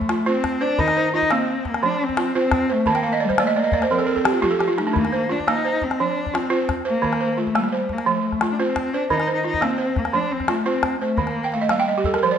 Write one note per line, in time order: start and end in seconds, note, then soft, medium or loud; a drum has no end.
0.00 0.30 A3 medium
0.00 calabash thump soft
0.00 calabash click soft
0.09 0.25 F4 medium
0.09 calabash click medium
0.26 0.63 C4 medium
0.26 0.61 F4 medium
0.26 0.60 C5 medium
0.44 calabash thump medium
0.44 calabash click medium
0.61 0.81 D4 loud
0.61 0.96 C5 medium
0.79 1.13 D#3 medium
0.79 1.14 D#4 loud
0.79 calabash thump medium
0.79 calabash click soft
0.88 calabash click medium
0.97 1.48 C5 medium
1.14 1.33 D#4 medium
1.14 1.66 F4 medium
1.22 calabash thump soft
1.31 1.66 A#3 medium
1.31 1.70 C4 medium
1.31 calabash click medium
1.65 1.87 A#3 medium
1.65 calabash thump medium
1.65 calabash click soft
1.74 calabash click medium
1.83 2.17 F3 medium
1.83 2.05 D4 medium
1.83 calabash click soft
2.04 2.37 C4 medium
2.09 calabash thump medium
2.09 calabash click soft
2.17 2.34 F4 medium
2.17 calabash click medium
2.35 2.74 C4 loud
2.35 2.70 F4 medium
2.35 2.68 C5 medium
2.52 calabash thump medium
2.52 calabash click medium
2.70 2.91 A3 medium
2.70 3.04 C5 medium
2.86 3.21 D#3 medium
2.86 3.26 A#3 loud
2.86 3.03 A5 medium
2.86 calabash thump medium
2.86 calabash click soft
2.95 3.11 G5 medium
2.95 calabash click medium
3.03 3.20 F5 medium
3.12 3.29 D#5 medium
3.12 calabash click soft
3.20 3.43 G3 medium
3.20 3.37 D5 medium
3.29 3.46 C5 medium
3.29 calabash thump medium
3.29 calabash click soft
3.38 3.61 A3 medium
3.38 3.74 A#3 medium
3.38 3.55 D5 medium
3.38 calabash click medium
3.46 3.63 D#5 medium
3.46 calabash click soft
3.56 3.90 A#3 loud
3.56 3.72 D5 medium
3.64 3.80 D#5 medium
3.72 3.90 D5 medium
3.72 calabash thump medium
3.82 3.99 C5 medium
3.82 calabash click medium
3.91 4.26 F3 medium
3.91 4.45 C4 medium
3.91 4.06 A#4 medium
3.99 4.15 A4 medium
3.99 calabash click soft
4.07 4.23 A#4 medium
4.16 4.32 A4 medium
4.16 calabash thump medium
4.24 4.41 G4 medium
4.24 calabash click medium
4.33 4.41 F4 medium
4.42 4.81 F3 medium
4.42 4.67 F4 medium
4.42 4.58 G4 medium
4.42 calabash thump soft
4.51 4.67 A4 medium
4.59 4.76 G4 medium
4.59 calabash click soft
4.68 4.84 F4 medium
4.78 5.00 A3 medium
4.78 4.94 D#4 medium
4.78 calabash click soft
4.87 5.03 D4 medium
4.93 5.29 D#3 medium
4.93 calabash thump medium
4.93 calabash click soft
4.98 5.33 A#3 loud
5.05 calabash click soft
5.12 5.64 C5 medium
5.29 5.49 D4 medium
5.29 5.81 F4 medium
5.40 calabash thump soft
5.48 5.82 A#3 medium
5.48 5.85 D#4 medium
5.48 calabash click medium
5.57 calabash click soft
5.65 6.16 C5 medium
5.82 6.02 C4 medium
5.82 calabash thump medium
5.82 calabash click soft
5.91 calabash click soft
6.00 6.34 F3 medium
6.00 6.37 D4 medium
6.00 calabash click soft
6.26 calabash thump soft
6.26 calabash click soft
6.34 6.69 C4 medium
6.34 6.49 F4 medium
6.34 calabash click medium
6.50 6.85 F4 medium
6.50 6.84 C5 medium
6.69 calabash thump medium
6.69 calabash click medium
6.85 7.40 A#3 medium
6.85 7.19 C5 medium
7.02 7.37 D#3 medium
7.02 calabash thump medium
7.02 calabash click soft
7.13 calabash click soft
7.21 7.71 C5 medium
7.37 7.60 A3 medium
7.37 7.89 F4 medium
7.47 calabash thump soft
7.55 7.94 G3 medium
7.55 7.89 A#3 medium
7.55 calabash click medium
7.64 calabash click soft
7.72 8.24 C5 medium
7.89 8.09 A#3 medium
7.89 calabash thump medium
7.89 calabash click soft
7.98 calabash click soft
8.06 8.41 F3 medium
8.06 8.54 A3 medium
8.06 calabash click soft
8.32 calabash thump soft
8.32 calabash click soft
8.41 8.58 F4 medium
8.41 calabash click medium
8.52 8.63 D4 medium
8.60 8.95 C4 medium
8.60 8.94 F4 medium
8.60 8.93 C5 medium
8.76 calabash thump medium
8.76 calabash click medium
8.93 9.09 D4 medium
8.93 9.26 C5 medium
9.10 9.45 D#3 medium
9.10 9.19 D#4 loud
9.10 calabash thump medium
9.10 calabash click soft
9.19 9.32 D#4 medium
9.19 calabash click soft
9.28 9.77 C5 medium
9.33 9.44 D#4 medium
9.44 9.65 D#4 loud
9.44 9.96 F4 medium
9.54 calabash thump medium
9.61 9.96 A#3 medium
9.61 10.00 C4 medium
9.61 calabash click medium
9.71 calabash click soft
9.78 10.31 C5 medium
9.96 10.17 A#3 medium
9.96 calabash thump medium
9.96 calabash click soft
10.05 calabash click soft
10.13 10.48 F3 medium
10.13 10.33 D4 medium
10.13 calabash click soft
10.32 10.51 C4 medium
10.40 calabash thump soft
10.40 calabash click soft
10.48 10.68 A3 medium
10.48 10.65 F4 medium
10.48 calabash click medium
10.66 11.00 C4 medium
10.66 11.01 F4 medium
10.66 11.00 C5 medium
10.83 calabash thump medium
10.83 calabash click medium
11.00 11.18 A3 medium
11.00 11.36 C5 medium
11.17 11.52 D#3 medium
11.17 11.56 A#3 medium
11.17 calabash thump medium
11.17 calabash click soft
11.27 calabash click soft
11.44 11.60 G5 medium
11.44 calabash click soft
11.52 11.71 A3 medium
11.52 11.69 F5 medium
11.52 calabash click soft
11.61 11.77 D#5 medium
11.69 12.38 G3 medium
11.69 12.05 A#3 medium
11.69 11.86 F5 medium
11.69 calabash click medium
11.78 11.95 G5 medium
11.78 calabash click soft
11.88 12.04 D#5 medium
11.98 12.13 G4 medium
12.04 12.21 A4 medium
12.04 calabash thump medium
12.14 12.29 A#4 medium
12.14 calabash click soft
12.23 12.38 F3 medium
12.23 12.38 C5 medium
12.31 12.38 D5 medium